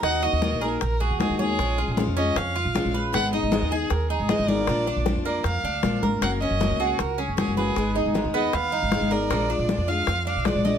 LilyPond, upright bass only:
\new Staff \with { instrumentName = "Upright bass" } { \clef bass \time 4/4 \key ees \minor \tempo 4 = 156 ees,8. ees,8 bes,,8. bes,,8. ees,8 ees,8. | bes,,8. bes,,8 f,8. f,8. bes,,8 bes,,8. | aes,,8. aes,,8 ees,8. ees,8. aes,,8 aes,,8. | bes,,8. bes,,8 f,8. f,8 d,8 bes,,8 aes,,8 |
ges,,8. ges,,8 des,8. des,8. ges,,8 ges,,8. | aes,,8. aes,,8 ees,8. ees,8. aes,,8 aes,,8. | bes,,8. bes,,8 f,8. f,8. bes,,8 bes,,8. | }